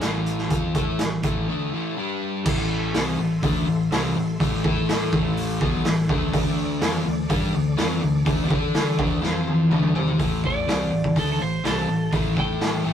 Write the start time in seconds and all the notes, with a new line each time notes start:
0.01 A1 A2 E3 A3, snare, closed hi-hat
0.26 closed hi-hat
0.38 snare
0.50 F2 F3 C4 F4, kick, closed hi-hat
0.74 A2 A3 E4 A4, kick, closed hi-hat
0.99 A1 A2 E3, snare, closed hi-hat
1.23 A1 A2 E3 A3, kick, closed hi-hat
1.49 D3 A3 D4
1.73 A2 E3 A3
1.97 G3 D4 G4
2.44 A1 A2 E3 A3 A4 E5 C6, kick, crash
2.94 C2 C3 G3 C4, snare, open hi-hat
3.19 A1 A2 E3
3.43 D2 D3 A3 D4, kick, open hi-hat
3.67 A1 A2 E3
3.91 C2 C3 G3 C4, snare, open hi-hat
4.15 A1 A2 E3
4.40 A1 A2 E3 A3, kick, open hi-hat
4.64 A2 A3 E4 A4, kick
4.89 snare, open hi-hat
5.12 A1 A2 E3 A3, kick
5.37 open hi-hat
5.61 B1 B2 F#3 B3, kick
5.85 A1 A2 E3, snare, open hi-hat
6.09 D2 D3 A3 D4, kick
6.31 D2 D3 A3 D4 A4 D5 D6, kick, open hi-hat
6.81 F2 F3 C4 F4, snare, open hi-hat
7.05 D2 D3 A3
7.29 G2 G3 D4 G4, kick, open hi-hat
7.53 D2 D3 A3
7.77 F2 F3 C4 F4, snare, open hi-hat
8.01 D2 D3 A3
8.25 D2 D3 A3 D4, kick, open hi-hat
8.50 D3 D4 A4 D5, kick
8.75 snare, open hi-hat
8.98 D2 D3 A3 D4, kick
9.21 F2 F3 C4 F4 C5 C6, snare
9.47 high tom
9.70 D2 D3 A3 D4 A4 D5 D6, mid tom
9.83 mid tom
9.95 C3 C4 G4 C5, floor tom
10.08 floor tom
10.18 A1 A2 E3 A3, kick, open hi-hat
10.44 D5, kick
10.67 C2 C3 G3 C4, snare, open hi-hat
10.92 A1 A2 E3
11.04 kick
11.16 D2 D3 A3 D4 A4, kick, open hi-hat
11.32 A4
11.39 A1 A2 E3 C5
11.64 C2 C3 G3 C4 A4, snare, open hi-hat
11.88 A1 A2 E3
12.13 A1 A2 E3 A3, kick, open hi-hat
12.37 A2 A3 E4 A4 G5, kick
12.61 snare, open hi-hat
12.84 A1 A2 E3 A3